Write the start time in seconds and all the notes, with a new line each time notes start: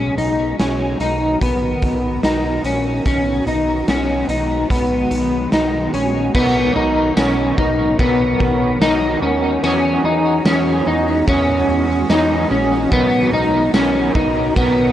Already playing: B1 D#3 F#3 B3 C#4 F#4 A#4
0.18 B1 D#4, closed hi-hat
0.59 B1 C#4, snare, closed hi-hat
1.00 B1 D#4, closed hi-hat
1.41 B1 B3, kick, closed hi-hat
1.82 B1, kick, closed hi-hat
2.23 B1 D#4, snare, closed hi-hat
2.64 A#1 C#4, closed hi-hat
3.05 B1 G#3 C#4, kick, closed hi-hat
3.47 B1 D#4, closed hi-hat
3.88 B1 C#4, snare, closed hi-hat
4.29 B1 D#4, closed hi-hat
4.70 B1 B3, kick, closed hi-hat
5.11 B1, closed hi-hat
5.52 B1 D#4, snare, closed hi-hat
5.94 A#1 C#4, closed hi-hat
6.34 B1 B2 D#3 F#3 B3 F#4 A#4, kick, crash
6.74 B1 B3 D#4 F#4 A#4
6.79 F#3
7.15 B1 B2 D#3 F#3 B3 C#4 F#4 A#4, snare, ride, tambourine
7.57 B1 B3 D#4 F#4 A#4, kick
7.61 F#3
7.98 B1 F#3 B3 F#4, kick, ride
8.02 A#4
8.38 B1 B3 F#4 A#4, kick
8.43 F#3
8.80 B1 B2 D#3 F#3 B3 D#4 F#4 A#4, snare, ride, tambourine
9.21 D#2 B3 C#4 F#4 A#4
9.26 F#3
9.62 E2 E3 F#3 G#3 C#4 F#4 G#4, ride
10.03 E2 D#4 F#4 G#4
10.08 C#4
10.45 E2 E3 F#3 C#4 F#4 G#4, snare, ride, tambourine
10.85 E2 D#4 F#4 G#4
10.90 C#4
11.26 E2 F#3 C#4 F#4, kick, ride
11.31 G#4
11.67 E2 F#4 G#4
11.72 C#4
12.08 E2 E3 F#3 C#4 D#4 F#4 G#4, snare, ride, tambourine
12.49 A#1 C#4 F#4 G#4
12.54 C#4
12.91 B1 B2 D#3 F#3 B3 D#4 A#4, kick, ride
13.32 B1 B3 D#4 A#4
13.36 F#3
13.73 B1 B2 D#3 F#3 B3 C#4 D#4 A#4, snare, ride, tambourine
14.14 B1 B3 D#4 A#4, kick
14.18 F#3
14.55 B1 F#3 B3 D#4, kick, ride
14.60 A#4